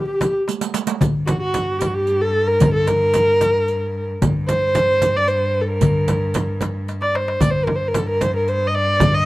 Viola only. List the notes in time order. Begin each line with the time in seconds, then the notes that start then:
0.00 G4
0.07 G4
0.15 G4
0.22 G4
0.29 G4
1.26 F#4
1.40 F#4
1.79 G4
1.87 F#4
1.94 G4
2.21 A4
2.47 A#4
2.74 A4
2.88 A#4
4.48 C5
5.16 D5
5.27 C5
5.61 A4
5.68 A#4
7.01 D5
7.15 C5
7.41 D5
7.51 C5
7.64 A#4
7.76 C5
7.88 A#4
7.98 A4
8.09 A#4
8.21 C5
8.36 A#4
8.48 C5
8.67 D#5
8.75 D5
9.15 D#5